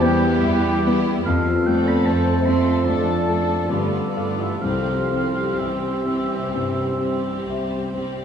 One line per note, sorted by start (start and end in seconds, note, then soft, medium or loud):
0.00 0.34 E2 medium
0.00 1.21 E2 medium
0.00 1.24 G3 medium
0.00 1.25 B3 medium
0.00 0.67 B3 medium
0.00 0.82 B3 soft
0.00 1.25 E4 medium
0.00 1.08 G4 medium
0.00 0.94 B4 medium
0.00 0.97 G5 medium
0.04 0.82 E4 medium
0.04 0.83 G4 medium
0.43 1.15 E2 medium
0.43 1.08 E5 medium
0.84 1.24 B3 soft
0.84 1.26 B3 soft
0.84 1.24 E4 medium
0.84 1.24 G4 soft
1.24 1.96 F2 medium
1.24 2.82 F2 medium
1.24 1.64 F3 medium
1.24 2.82 C4 medium
1.24 4.44 F4 medium
1.24 4.58 A4 medium
1.24 1.66 A4 medium
1.24 1.68 F5 medium
1.65 1.85 G3 medium
1.65 2.43 A3 soft
1.65 2.30 A3 soft
1.65 2.43 C4 soft
1.65 2.44 A4 soft
1.65 1.86 B4 medium
1.65 1.89 G5 medium
1.85 2.05 B3 medium
1.85 2.05 D5 medium
1.85 2.07 B5 medium
2.05 2.76 F2 medium
2.05 2.45 A3 medium
2.05 2.45 C5 medium
2.05 2.70 C5 soft
2.05 2.47 A5 medium
2.43 2.84 A3 soft
2.43 2.86 A3 soft
2.43 2.84 C4 medium
2.43 2.84 C4 soft
2.43 2.84 E5 medium
2.43 2.86 C6 medium
2.47 2.85 A4 soft
2.83 3.60 F2 medium
2.83 3.68 F2 soft
2.83 3.26 A3 soft
2.83 3.70 A3 soft
2.83 3.24 D4 soft
2.83 3.68 D4 soft
2.83 3.27 A4 soft
2.83 3.67 D5 medium
2.83 3.72 A5 medium
3.25 3.68 A3 soft
3.25 3.68 D4 soft
3.25 3.70 A4 soft
3.25 3.67 D5 soft
3.30 3.67 A4 soft
3.66 4.50 G2 soft
3.66 4.59 G2 soft
3.66 4.38 D3 soft
3.66 4.14 A3 soft
3.66 4.12 B3 soft
3.66 4.36 F4 soft
3.71 4.44 B3 soft
3.71 4.15 F4 soft
3.71 4.42 D5 medium
4.14 4.61 A3 soft
4.14 4.61 B3 soft
4.14 4.62 F4 soft
4.14 4.59 A4 soft
4.14 4.59 F5 soft
4.36 4.62 E3 soft
4.36 4.61 G4 soft
4.41 4.63 E5 soft
4.61 5.47 C2 soft
4.61 6.49 C2 soft
4.61 5.56 F3 soft
4.61 5.10 G3 soft
4.61 7.99 C4 soft
4.61 5.09 C4 soft
4.61 7.99 G4 soft
4.61 5.10 G4 soft
4.61 5.56 A4 soft
4.61 8.04 C5 soft
4.61 5.60 F5 medium
5.10 6.04 G3 soft
5.10 6.03 C4 soft
5.10 5.87 C4 soft
5.10 6.04 G4 soft
5.58 6.41 C2 soft
5.58 7.47 E3 soft
5.58 7.48 G4 soft
5.58 6.34 E5 soft
5.58 7.47 E5 soft
6.05 6.99 G3 soft
6.05 6.97 C4 soft
6.05 6.81 C4 soft
6.05 6.99 G4 soft
6.52 7.36 C2 soft
6.52 7.29 G2 soft
6.98 7.91 G3 soft
6.98 7.90 C4 soft
6.98 7.75 C4 soft
6.98 7.91 G4 soft
7.46 8.25 C2 soft
7.46 8.22 E5 soft
7.93 8.25 G3 soft
7.93 8.25 C4 soft
7.93 8.25 G4 soft